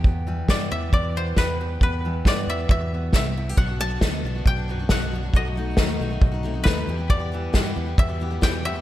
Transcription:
<<
  \new Staff \with { instrumentName = "Koto" } { \time 4/4 \key e \minor \tempo 4 = 136 r4 d''8 e''8 d''8 c''8 b'4 | b'4 d''8 e''8 e''4 e''4 | fis''8 a''4. g''4 fis''4 | dis''2 r4 b'4 |
d''2 e''4 g''8 e''8 | }
  \new Staff \with { instrumentName = "Steel-string acoustic guitar" } { \time 4/4 \key e \minor << { <b g'>8 g8 b4 g8 b8 g'8 g'8 | b8 g8 b4 g8 b8 g'8 e'16 g'16 | d'8 d'8 b8 d'4 b8 d'8 d'8 | fis'8 dis'8 a8 dis'2 g'8 |
b8 g8 b4 g8 b8 g'8 g'8 | } \\ { e,8 e4. b,4. e,8~ | e,8 e4. b,4. e,8 | b,4 d4. fis,4. | b,4 dis4. c8 dis8 e,8~ |
e,8 e4. b,4. e,8 | } >> }
  \new Staff \with { instrumentName = "Steel-string acoustic guitar" } { \time 4/4 \key e \minor r1 | r1 | <b, fis b d' fis'>16 <b d' fis'>16 <fis b d' fis'>8 <b, fis b d' fis'>8 <fis b d' fis'>16 <b d' fis'>8 <b d' fis'>16 <fis b d' fis'>16 <b d' fis'>16 <b, fis b d' fis'>8 <fis b d' fis'>16 <b d' fis'>16 | <b, fis a dis' fis'>16 <a dis' fis'>16 <fis a dis' fis'>8 <b, fis a dis' fis'>8 <fis a dis' fis'>16 <a dis' fis'>8 <a dis' fis'>16 <fis a dis' fis'>16 <a dis' fis'>16 <b, fis a dis' fis'>8 <e g b g'>16 <e g b g'>16 |
<e, b, e g b g'>16 <e g b g'>16 <e g b g'>8 <e, b, e g b g'>8 <e g b g'>16 <e g b g'>8 <e g b g'>16 <e g b g'>16 <e g b g'>16 <e, b, e g b g'>8 <e g b g'>16 <e g b g'>16 | }
  \new Staff \with { instrumentName = "Fingered electric bass" } { \clef bass \time 4/4 \key e \minor e,4 g,8 e,8 e,4 e,4 | e,4 g,8 e,8 e,4 c,4 | b,,4 d,8 b,,8 b,,4 b,,4 | b,,4 dis,8 b,,8 b,,4 dis,8 e,8~ |
e,4 g,8 e,8 e,4 e,4 | }
  \new DrumStaff \with { instrumentName = "Drums" } \drummode { \time 4/4 bd4 <bd sn>4 bd4 <bd sn>4 | bd4 <bd sn>4 bd4 <bd sn>4 | bd4 <bd sn>4 bd4 <bd sn>4 | bd4 <bd sn>4 bd4 <bd sn>4 |
bd4 <bd sn>4 bd4 <bd sn>4 | }
>>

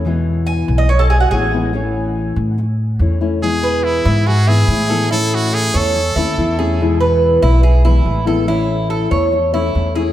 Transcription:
<<
  \new Staff \with { instrumentName = "Cuban tres" } { \time 4/4 \key e \major \tempo 4 = 142 r4 gis''8. dis''16 cis''16 a'16 gis'16 fis'16 gis'4~ | gis'2 r2 | r8 b'4 e'8 gis'8 e'4 a'8 | e'4 a'8 cis''4 e'4 gis'8~ |
gis'8 b'4 e'8 gis'8 e'4 a'8 | e'4 a'8 cis''4 e'4 gis'8 | }
  \new Staff \with { instrumentName = "Trumpet" } { \time 4/4 \key e \major r1 | r1 | gis'4 e'4 fis'8 gis'4. | a'8 fis'8 gis'8 a'2 r8 |
r1 | r1 | }
  \new Staff \with { instrumentName = "Nylon-string guitar" } { \time 4/4 \key e \major <b, e gis b e'>2 r4 <e gis b e'>8 <e gis b e'>8 | <e a cis' e'>2 r4 <e a cis' e'>8 <a cis' e'>8 | <b, e gis b e'>2 r8 <e gis b e'>8 <e gis b e'>8 <e gis b e'>8 | <e a cis' e'>2 r8 <a cis' e'>8 <e a cis' e'>8 <a cis' e'>8 |
<b, e gis b e'>2 r8 <e gis b e'>8 <e gis b e'>8 <e gis b e'>8 | <e a cis' e'>2 r8 <a cis' e'>8 <e a cis' e'>8 <a cis' e'>8 | }
  \new Staff \with { instrumentName = "Upright bass" } { \clef bass \time 4/4 \key e \major e,4. b,,4. a,,4~ | a,,4. a,4. e,4~ | e,4. gis,4. a,4~ | a,4. e,4 dis,8 e,4~ |
e,4. b,,4. a,,4~ | a,,4. e,4. e,4 | }
>>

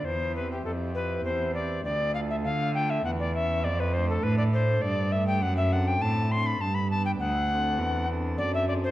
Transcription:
<<
  \new Staff \with { instrumentName = "Recorder" } { \time 3/4 \key d \dorian \tempo 4 = 101 c''8 b'16 g'16 a'8 b'8 c''8 d''8 | d''8 f''16 e''16 f''8 g''16 e''16 fis''16 d''16 e''8 | d''16 b'16 c''16 a'16 b'16 d''16 c''8 d''8 e''16 g''16 | \key d \mixolydian fis''16 e''16 fis''16 g''16 a''8 c'''16 b''16 a''16 b''16 a''16 g''16 |
fis''4. r8 d''16 e''16 d''16 c''16 | }
  \new Staff \with { instrumentName = "Pipe organ" } { \time 3/4 \key d \dorian r8 <c' e' g'>4 <c' e' g'>4 <c' e' g'>8 | r8 <a f' a'>4 <a f' a'>8 r8 <cis' cis''>8 | r8 <a d' a'>4 <a d' a'>4 <a d' a'>8 | \key d \mixolydian r8 <c' d' a'>4 <c' d' a'>8 r8 <b d' b'>8 |
r8 <c' d' a'>4 <c' d' a'>4 <c' d' a'>8 | }
  \new Staff \with { instrumentName = "Pipe organ" } { \clef bass \time 3/4 \key d \dorian e,4 f,4 e,4 | d,4 d4 e,4 | f,4 a,4 g,4 | \key d \mixolydian fis,4 a,4 g,4 |
d,4 e,4 fis,4 | }
  \new Staff \with { instrumentName = "Cello" } { \clef bass \time 3/4 \key d \dorian e,4 f,4 e,4 | d,4 d4 e,4 | f,4 a,4 g,4 | \key d \mixolydian fis,4 a,4 g,4 |
d,4 e,4 fis,4 | }
>>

